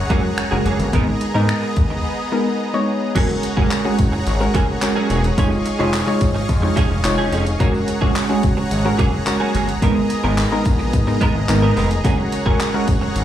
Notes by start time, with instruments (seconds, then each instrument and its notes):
Already playing: supersaw synth G#4 C#5 F#5 A#5
0.10 analog synth bass F#2, clean electric guitar F#3 A#3 C#4 G#4, synth pluck G#3 C#4 F#4 A#4, kick, closed hi-hat
0.24 muted clean electric guitar stroke
0.37 finger snap, muted clean electric guitar stroke, closed hi-hat
0.51 analog synth bass F#1, clean electric guitar F#3 A#3 C#4 G#4, synth pluck G#3 C#4 F#4 A#4
0.65 analog synth bass F#1, clean electric guitar F#3 A#3 C#4 G#4, closed hi-hat
0.79 analog synth bass G1, muted clean electric guitar stroke, closed hi-hat
0.93 analog synth bass G#1, clean electric guitar G#3 B3 D#4 A#4, synth pluck G#3 B3 D#4 A#4, supersaw synth B3 D#5, kick, closed hi-hat
1.07 muted clean electric guitar stroke
1.21 muted clean electric guitar stroke, closed hi-hat
1.34 analog synth bass G#2, synth pluck G#3 B3 D#4 A#4, clean electric guitar G#3 B3 D#4 A#4
1.49 finger snap, muted clean electric guitar stroke, closed hi-hat
1.63 muted clean electric guitar stroke
1.76 analog synth bass D#2, kick, closed hi-hat
1.90 muted clean electric guitar stroke
2.32 synth pluck G#3 B3 D#4 A#4
2.74 synth pluck G#3 B3 D#4 C#5
3.15 analog synth bass F#1, clean electric guitar F#3 A#3 C#4 G#4, synth pluck G#3 C#4 F#4 A#4, supersaw synth G#4 C#5 F#5 A#5, kick, closed hi-hat, crash, tambourine
3.29 muted clean electric guitar stroke
3.43 muted clean electric guitar stroke, closed hi-hat, tambourine
3.57 analog synth bass F#1, clean electric guitar F#3 A#3 C#4 G#4, synth pluck G#3 C#4 F#4 A#4, kick
3.71 muted clean electric guitar stroke, clap, closed hi-hat, tambourine
3.85 synth pluck G#3 C#4 F#4 G#4, muted clean electric guitar stroke
3.99 analog synth bass F#1, kick, closed hi-hat, tambourine
4.12 muted clean electric guitar stroke, tambourine
4.27 analog synth bass G#1, closed hi-hat, tambourine
4.40 synth pluck G#3 C#4 F#4 A#4, muted clean electric guitar stroke, tambourine
4.54 analog synth bass F#1, clean electric guitar F#3 A#3 C#4 G#4, kick, closed hi-hat, tambourine
4.68 muted clean electric guitar stroke
4.82 synth pluck G#3 C#4 F#4 A#4, muted clean electric guitar stroke, clap, closed hi-hat, tambourine
4.95 clean electric guitar F#3 A#3 C#4 G#4
5.09 analog synth bass E1, clean electric guitar F#3 A#3 C#4 G#4, closed hi-hat, tambourine
5.24 muted clean electric guitar stroke, closed hi-hat, tambourine
5.37 analog synth bass F1, clean electric guitar F3 C#4 D#4 G#4, synth pluck G#3 D#4 F4 C#5, supersaw synth D#5 F5 C#6, kick, closed hi-hat, tambourine
5.51 muted clean electric guitar stroke, tambourine
5.65 muted clean electric guitar stroke, closed hi-hat, tambourine
5.79 analog synth bass F1, clean electric guitar F3 C#4 D#4 G#4, synth pluck G#3 D#4 F4 C#5
5.93 muted clean electric guitar stroke, clap, closed hi-hat, tambourine
6.07 synth pluck G#3 D#4 F4 C#5, muted clean electric guitar stroke
6.21 analog synth bass G#1, kick, closed hi-hat, tambourine
6.35 muted clean electric guitar stroke, tambourine
6.49 analog synth bass F2, kick, closed hi-hat, tambourine
6.62 synth pluck G#3 D#4 F4 C#5, muted clean electric guitar stroke
6.76 clean electric guitar F3 C#4 D#4 G#4, kick, closed hi-hat, tambourine
6.90 analog synth bass F1, muted clean electric guitar stroke
7.04 analog synth bass F1, synth pluck G#3 D#4 F4 C#5, muted clean electric guitar stroke, clap, closed hi-hat, tambourine
7.18 clean electric guitar F3 C#4 D#4 G#4
7.32 analog synth bass F1, clean electric guitar F3 C#4 D#4 G#4, closed hi-hat, tambourine
7.46 muted clean electric guitar stroke, closed hi-hat, tambourine
7.59 analog synth bass F#1, clean electric guitar F#3 A#3 C#4 G#4, synth pluck G#3 C#4 F#4 A#4, supersaw synth G#4 C#5 F#5 A#5, kick, closed hi-hat, tambourine
7.74 muted clean electric guitar stroke, tambourine
7.87 muted clean electric guitar stroke, closed hi-hat, tambourine
8.01 analog synth bass F#1, clean electric guitar F#3 A#3 C#4 G#4, synth pluck G#3 C#4 F#4 C#5, kick
8.15 muted clean electric guitar stroke, clap, closed hi-hat, tambourine
8.29 synth pluck G#3 C#4 F#4 G#4, muted clean electric guitar stroke
8.43 analog synth bass F#1, kick, closed hi-hat, tambourine
8.57 muted clean electric guitar stroke
8.71 analog synth bass G#1, closed hi-hat, tambourine
8.85 synth pluck G#3 C#4 F#4 A#4, muted clean electric guitar stroke
8.98 analog synth bass F#1, clean electric guitar F#3 A#3 C#4 G#4, kick, closed hi-hat, tambourine
9.13 muted clean electric guitar stroke
9.26 synth pluck G#3 C#4 F#4 A#4, muted clean electric guitar stroke, clap, closed hi-hat, tambourine
9.40 clean electric guitar F#3 A#3 C#4 G#4
9.54 analog synth bass G1, clean electric guitar F#3 A#3 C#4 G#4, closed hi-hat, tambourine
9.68 muted clean electric guitar stroke, closed hi-hat, tambourine
9.82 analog synth bass G#1, clean electric guitar G#3 B3 D#4 A#4, synth pluck G#3 B3 D#4 A#4, supersaw synth B3 D#5, kick, closed hi-hat, tambourine
9.96 muted clean electric guitar stroke
10.10 muted clean electric guitar stroke, closed hi-hat, tambourine
10.24 analog synth bass G#1, synth pluck G#3 B3 D#4 A#4, clean electric guitar G#3 B3 D#4 A#4
10.38 muted clean electric guitar stroke, clap, closed hi-hat, tambourine
10.52 synth pluck G#3 B3 D#4 A#4, muted clean electric guitar stroke
10.65 analog synth bass A#1, kick, closed hi-hat, tambourine
10.79 muted clean electric guitar stroke, tambourine
10.93 analog synth bass G#2, kick, closed hi-hat, tambourine
11.07 synth pluck G#3 B3 D#4 A#4, muted clean electric guitar stroke, tambourine
11.21 clean electric guitar G#3 B3 D#4 A#4, kick, closed hi-hat, tambourine
11.35 analog synth bass G#1, muted clean electric guitar stroke
11.49 analog synth bass G#1, synth pluck G#3 B3 D#4 A#4, muted clean electric guitar stroke, clap, closed hi-hat, tambourine
11.62 clean electric guitar G#3 B3 D#4 A#4
11.76 analog synth bass F1, clean electric guitar G#3 B3 D#4 A#4, open hi-hat, tambourine
11.90 muted clean electric guitar stroke, closed hi-hat, tambourine
12.04 analog synth bass F#1, clean electric guitar F#3 A#3 C#4 G#4, synth pluck G#3 C#4 F#4 A#4, supersaw synth C#5 F#5, kick, closed hi-hat, tambourine
12.18 muted clean electric guitar stroke
12.32 muted clean electric guitar stroke, closed hi-hat, tambourine
12.46 analog synth bass F#1, clean electric guitar F#3 A#3 C#4 G#4, synth pluck G#3 C#4 F#4 A#4, kick
12.60 muted clean electric guitar stroke, clap, closed hi-hat, tambourine
12.73 synth pluck G#3 C#4 F#4 A#4, muted clean electric guitar stroke
12.88 analog synth bass F#1, kick, closed hi-hat, tambourine
13.01 muted clean electric guitar stroke, tambourine
13.15 analog synth bass G#1, closed hi-hat, tambourine